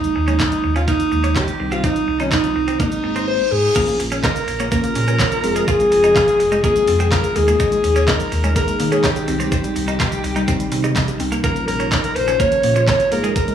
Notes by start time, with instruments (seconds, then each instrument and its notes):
Already playing: tine electric piano D#3 G#3 A#3 D#4, alto saxophone D#4
0.04 closed hi-hat, shaker
0.16 sub bass D#2, muted clean electric guitar stroke
0.28 tine electric piano D#3 G#3 A#3 D#4, clean electric guitar C#4, closed hi-hat, shaker
0.40 clean electric guitar D#4, alto saxophone D#4, kick, snare, clap, closed hi-hat, shaker
0.52 closed hi-hat, shaker
0.64 sub bass D#2, muted clean electric guitar stroke
0.76 clean electric guitar C#4, alto saxophone F4, closed hi-hat, shaker
0.88 clean electric guitar A#3, alto saxophone D#4, kick, closed hi-hat, shaker
1.00 closed hi-hat, shaker
1.12 sub bass D#2, tine electric piano D#3 G#3 A#3 D#4, muted clean electric guitar stroke, shaker
1.24 clean electric guitar C#4, closed hi-hat, shaker
1.36 clean electric guitar C#4, alto saxophone G4, kick, snare, clap, closed hi-hat, shaker
1.48 closed hi-hat, shaker
1.60 sub bass C2, tine electric piano D#3 G3 C4 D#4, muted clean electric guitar stroke
1.72 clean electric guitar C4, alto saxophone F4, closed hi-hat, shaker
1.84 clean electric guitar C4, alto saxophone D#4, kick, closed hi-hat, shaker
1.96 closed hi-hat, shaker
2.08 sub bass C2, muted clean electric guitar stroke
2.19 tine electric piano D#3 G3 C4 F4, alto saxophone C#4, clean electric guitar D#4, closed hi-hat, shaker
2.32 clean electric guitar D#4, alto saxophone D#4, kick, snare, clap, closed hi-hat, shaker
2.44 closed hi-hat, shaker
2.56 sub bass C2, muted clean electric guitar stroke
2.68 clean electric guitar C4, closed hi-hat, shaker
2.80 tine electric piano G#3 A#3 C4 D#4, clean electric guitar A#3, alto saxophone D#4, kick, closed hi-hat, reverse cymbal, shaker
2.92 closed hi-hat, shaker
3.03 sub bass G#1, tine electric piano G#3 A#3 C4 D#4, muted clean electric guitar stroke
3.16 clean electric guitar C4, closed hi-hat, shaker
3.27 alto saxophone C5
3.52 sub bass G#2, alto saxophone G#4
3.75 ambient pad C#3 F3 A#3 F4, tine electric piano F3 A#3 C#4 F4 A#4, synth arpeggio sound F3, clean electric guitar A#3, kick, closed hi-hat, crash, shaker
3.88 synth arpeggio sound A#3, closed hi-hat, shaker
4.00 sub bass A#1, muted clean electric guitar stroke, open hi-hat, shaker
4.12 clean electric guitar C#4, closed hi-hat, shaker
4.24 clean electric guitar D#4, alto saxophone A#4, synth arpeggio sound F5, kick, snare, clap, closed hi-hat, shaker
4.36 closed hi-hat, shaker
4.48 sub bass A#1, muted clean electric guitar stroke, open hi-hat, shaker
4.60 synth arpeggio sound A#3, clean electric guitar C#4, closed hi-hat, shaker
4.72 tine electric piano F3 A#3 C#4 F4 G4, clean electric guitar A#3, alto saxophone A#4, kick, closed hi-hat, shaker
4.84 synth arpeggio sound A#3, closed hi-hat, shaker
4.95 sub bass A#2, synth arpeggio sound C#4, muted clean electric guitar stroke, open hi-hat, shaker
5.08 clean electric guitar C#4, synth arpeggio sound A#4, closed hi-hat, shaker
5.20 clean electric guitar C#4, synth arpeggio sound F5, kick, snare, clap, closed hi-hat, shaker
5.32 synth arpeggio sound A#4, closed hi-hat, shaker
5.44 sub bass F1, ambient pad C3 G#3, tine electric piano F3 G#3 C4 F4 G#4, synth arpeggio sound C4, muted clean electric guitar stroke, open hi-hat, shaker
5.56 clean electric guitar G#3, closed hi-hat, shaker
5.68 synth arpeggio sound F3, clean electric guitar F4, alto saxophone G#4, kick, closed hi-hat, shaker
5.80 synth arpeggio sound G#3, closed hi-hat, shaker
5.92 sub bass F1, muted clean electric guitar stroke, open hi-hat, shaker
6.04 clean electric guitar D#4, closed hi-hat, shaker
6.16 clean electric guitar F4, synth arpeggio sound F5, kick, snare, clap, closed hi-hat, shaker
6.28 closed hi-hat, shaker
6.40 sub bass F1, muted clean electric guitar stroke, open hi-hat, shaker
6.52 synth arpeggio sound G#3, clean electric guitar D#4, closed hi-hat, shaker
6.64 tine electric piano F3 G#3 C4 F4 G#4, clean electric guitar A#3, alto saxophone G#4, kick, closed hi-hat, shaker
6.76 synth arpeggio sound G#3, closed hi-hat, shaker
6.87 sub bass F2, synth arpeggio sound C4, muted clean electric guitar stroke, open hi-hat, shaker
7.00 clean electric guitar C4, synth arpeggio sound G#4, closed hi-hat, shaker
7.12 clean electric guitar C4, alto saxophone A#4, synth arpeggio sound F5, kick, snare, clap, closed hi-hat, shaker
7.24 synth arpeggio sound G#4, closed hi-hat, shaker
7.36 sub bass D#2, ambient pad A#2 D#3 D#4, tine electric piano D#3 G#3 A#3 D#4 G#4, synth arpeggio sound A#3, alto saxophone G#4, muted clean electric guitar stroke, open hi-hat, shaker
7.48 clean electric guitar G#3, closed hi-hat, shaker
7.60 synth arpeggio sound D#3, clean electric guitar D#4, kick, closed hi-hat, shaker
7.72 synth arpeggio sound G#3, closed hi-hat, shaker
7.84 sub bass D#2, muted clean electric guitar stroke, open hi-hat, shaker
7.96 clean electric guitar C#4, closed hi-hat, shaker
8.08 clean electric guitar D#4, alto saxophone A#4, synth arpeggio sound D#5, kick, snare, clap, closed hi-hat, shaker
8.20 closed hi-hat, shaker
8.32 sub bass D#2, muted clean electric guitar stroke, open hi-hat, shaker
8.44 synth arpeggio sound G#3, clean electric guitar C#4, closed hi-hat, shaker
8.56 tine electric piano D#3 G#3 A#3 D#4 G#4, clean electric guitar A#3, alto saxophone A#4, kick, closed hi-hat, shaker
8.68 synth arpeggio sound G#3, closed hi-hat, shaker
8.80 sub bass D#3, synth arpeggio sound A#3, muted clean electric guitar stroke, open hi-hat, shaker
8.92 clean electric guitar C#4, synth arpeggio sound G#4, alto saxophone G#4, closed hi-hat, shaker
9.04 clean electric guitar C#4, alto saxophone G4, synth arpeggio sound D#5, kick, snare, clap, closed hi-hat, shaker
9.16 synth arpeggio sound G#4, closed hi-hat, shaker
9.28 sub bass C2, ambient pad C3 G3, tine electric piano D#3 G3 C4 D#4 G4, synth arpeggio sound C4, muted clean electric guitar stroke, open hi-hat, shaker
9.40 clean electric guitar C4, closed hi-hat, shaker
9.52 synth arpeggio sound D#3, clean electric guitar C4, alto saxophone G4, kick, closed hi-hat, shaker
9.64 synth arpeggio sound G3, closed hi-hat, shaker
9.76 sub bass C2, muted clean electric guitar stroke, open hi-hat, shaker
9.88 clean electric guitar D#4, closed hi-hat, shaker
10.00 clean electric guitar F4, synth arpeggio sound D#5, kick, snare, clap, closed hi-hat, shaker
10.12 closed hi-hat, shaker
10.24 sub bass C2, muted clean electric guitar stroke, open hi-hat, shaker
10.36 synth arpeggio sound G3, clean electric guitar D#4, closed hi-hat, shaker
10.48 tine electric piano D#3 G3 C4 D#4 G4, clean electric guitar C4, kick, closed hi-hat, shaker
10.60 synth arpeggio sound G3, closed hi-hat, shaker
10.72 sub bass C3, synth arpeggio sound C4, muted clean electric guitar stroke, open hi-hat, shaker
10.84 clean electric guitar D#4, synth arpeggio sound G4, closed hi-hat, shaker
10.96 clean electric guitar D#4, synth arpeggio sound D#5, kick, snare, clap, closed hi-hat, shaker
11.08 synth arpeggio sound G4, closed hi-hat, shaker
11.20 sub bass C2, synth arpeggio sound C4, muted clean electric guitar stroke, open hi-hat, shaker
11.32 clean electric guitar A#3, closed hi-hat, shaker
11.44 ambient pad C#3 F3 A#3 F4, synth arpeggio sound C#3, tine electric piano F3 A#3 C#4 F4 A#4, clean electric guitar A#3, alto saxophone A#4, kick, closed hi-hat, shaker
11.56 synth arpeggio sound F3, closed hi-hat, shaker
11.68 sub bass A#1, alto saxophone A#4, muted clean electric guitar stroke, open hi-hat, shaker
11.80 clean electric guitar C#4, closed hi-hat, shaker
11.92 clean electric guitar D#4, synth arpeggio sound C#5, kick, snare, clap, closed hi-hat, shaker
12.04 alto saxophone A#4, closed hi-hat, shaker
12.16 sub bass A#1, alto saxophone C5, muted clean electric guitar stroke, open hi-hat, shaker
12.28 synth arpeggio sound F3, clean electric guitar C#4, closed hi-hat, shaker
12.40 tine electric piano F3 A#3 C#4 F4 A#4, clean electric guitar A#3, alto saxophone C#5, kick, closed hi-hat, shaker
12.52 synth arpeggio sound F3, closed hi-hat, shaker
12.63 sub bass A#2, synth arpeggio sound A#3, muted clean electric guitar stroke, open hi-hat, shaker
12.76 clean electric guitar C#4, synth arpeggio sound F4, closed hi-hat, shaker
12.88 clean electric guitar C#4, alto saxophone C#5, synth arpeggio sound C#5, kick, snare, clap, closed hi-hat, shaker
13.00 synth arpeggio sound F4, closed hi-hat, shaker
13.12 sub bass G#1, ambient pad A#2 D#3 G#3 D#4, tine electric piano G#3 A#3 D#4 G#4 A#4, synth arpeggio sound A#3, alto saxophone A#4, muted clean electric guitar stroke, open hi-hat, shaker
13.24 clean electric guitar G#3, closed hi-hat, shaker
13.36 synth arpeggio sound D#3, alto saxophone A#4, kick, closed hi-hat, shaker
13.48 synth arpeggio sound G#3, closed hi-hat, shaker